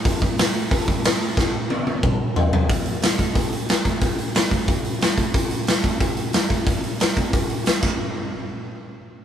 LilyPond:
\new DrumStaff \with { instrumentName = "Drums" } \drummode { \time 4/4 \tempo 4 = 181 <hho bd>8 bd8 <hho sn>4 <hho bd>8 bd8 <hho sn>4 | <bd sn>4 tommh8 tommh8 <bd toml>4 tomfh8 tomfh8 | <hho bd>8 hho8 <hho sn>8 <hho bd>8 <hho bd>8 hho8 <hho sn>8 <hho bd>8 | <hho bd>8 hho8 <hho sn>8 <hho bd>8 <hho bd>8 hho8 <hho sn>8 <hho bd>8 |
<hho bd>8 hho8 <hho sn>8 <hho bd>8 <hho bd>8 hho8 <hho sn>8 <hho bd>8 | <hho bd>8 hho8 <hho sn>8 <hho bd>8 <hho bd>8 hho8 <hho sn>8 <cymc bd>8 | r4 r4 r4 r4 | }